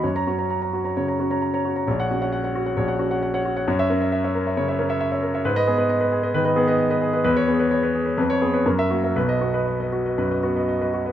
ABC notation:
X:1
M:4/4
L:1/16
Q:1/4=132
K:F#mix
V:1 name="Grand piano"
c [ca] F [ca] a [ca] F [ca] c [ca] F [ca] a [ca] F [ca] | c [cf] F [cf] f [cf] F [cf] c [cf] F [cf] f [cf] F [cf] | c [ce] A [ce] e [ce] A [ce] c [ce] A [ce] e [ce] A [ce] | B [Bd] G [Bd] d [Bd] G [Bd] B [Bd] G [Bd] d [Bd] G [Bd] |
B [Bc] G [Bc] c [Bc] G [Bc] B [Bc] G [Bc] A [Ae] F [Ae] | B [Bd] F [Bd] d [Bd] F [Bd] B [Bd] F [Bd] d [Bd] F [Bd] |]
V:2 name="Grand piano" clef=bass
F,,2 C2 z4 C,2 C2 z4 | A,,,2 C2 z4 A,,,2 C2 z4 | F,,2 C2 z4 C,2 C2 z4 | G,,2 B,2 z4 D,2 B,2 z4 |
E,,2 B,2 z4 ^E,,2 B,2 F,,2 A,2 | B,,,2 B,2 z4 F,,2 B,2 z4 |]